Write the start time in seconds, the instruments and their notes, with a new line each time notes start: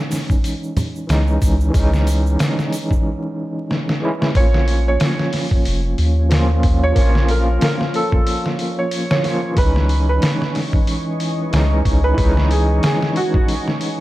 Already playing: tine electric piano E3 G#3 C#4 D#4
0.12 snare, open hi-hat, shaker
0.30 kick, shaker
0.44 open hi-hat, shaker
0.63 shaker
0.77 open hi-hat, low conga, shaker
0.96 shaker
1.07 sub bass C#2, tine electric piano E3 G#3 C#4, snare, open hi-hat, shaker
1.12 tine electric piano D#4
1.27 shaker
1.42 sub bass C#2, kick, open hi-hat, shaker
1.61 shaker
1.70 tine electric piano E3 G#3, kick, open hi-hat
1.74 sub bass C#2, tine electric piano C#4, shaker
1.79 tine electric piano D#4
1.93 snare, shaker
2.07 open hi-hat, shaker
2.26 shaker
2.39 snare, open hi-hat, shaker
2.59 snare, shaker
2.72 open hi-hat, shaker
2.91 kick, shaker
3.71 snare
3.89 snare
4.00 tine electric piano E3 G#3 C#4
4.05 tine electric piano E4
4.22 snare
4.34 sub bass A#1, tine electric piano A#3 C#4, ambient pad F4 C#5 F5 C#6, felt piano C#5, kick, open hi-hat
4.40 tine electric piano F4
4.54 snare
4.68 open hi-hat
4.88 felt piano C#5
5.00 snare, open hi-hat
5.19 snare
5.33 snare, open hi-hat
5.51 kick
5.65 sub bass F1, open hi-hat
5.98 sub bass D#2, open hi-hat
6.29 tine electric piano F3 A#3 C#4, snare, open hi-hat
6.34 tine electric piano F4
6.63 kick, open hi-hat
6.83 felt piano C#5
6.92 sub bass A#1, tine electric piano F3 A#3, kick, open hi-hat
6.98 tine electric piano C#4 F4
7.15 snare
7.29 felt piano A#4, open hi-hat
7.61 felt piano A#4, snare, open hi-hat
7.81 snare
7.94 felt piano A4, open hi-hat
8.12 kick
8.27 open hi-hat
8.46 snare
8.59 open hi-hat
8.79 felt piano C#5
8.91 open hi-hat
9.11 felt piano C#5, snare
9.23 tine electric piano F3 A#3 C#4, snare, open hi-hat
9.27 tine electric piano F4
9.52 tine electric piano E3 G#3
9.57 sub bass C#2, ambient pad E3 D#5 G#5, tine electric piano C#4, felt piano B4, kick, open hi-hat
9.62 tine electric piano D#4
9.76 snare
9.89 open hi-hat
10.09 felt piano B4
10.22 snare, open hi-hat
10.42 snare
10.55 snare, open hi-hat
10.73 kick
10.87 open hi-hat
11.20 open hi-hat
11.51 sub bass C#2, tine electric piano E3 G#3 C#4, snare, open hi-hat
11.56 tine electric piano D#4
11.85 sub bass C#2, kick, open hi-hat
12.04 felt piano B4
12.14 sub bass C#2, tine electric piano E3 G#3, kick, open hi-hat
12.20 tine electric piano C#4 D#4
12.37 snare
12.51 felt piano G#4, open hi-hat
12.83 felt piano G#4, snare, open hi-hat
13.03 snare
13.16 felt piano F#4, open hi-hat
13.34 kick
13.48 open hi-hat
13.68 snare
13.81 open hi-hat